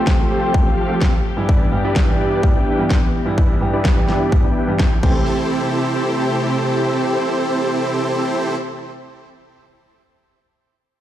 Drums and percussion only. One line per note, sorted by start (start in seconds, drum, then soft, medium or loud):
0.07 kick loud
0.07 snare loud
0.54 kick loud
1.01 kick loud
1.01 snare loud
1.49 kick loud
1.96 kick loud
1.96 snare loud
2.43 kick loud
2.90 kick medium
2.90 snare loud
3.38 kick loud
3.85 kick loud
3.85 snare loud
4.08 snare medium
4.32 kick loud
4.79 kick loud
4.79 snare loud
5.03 kick loud
5.03 crash medium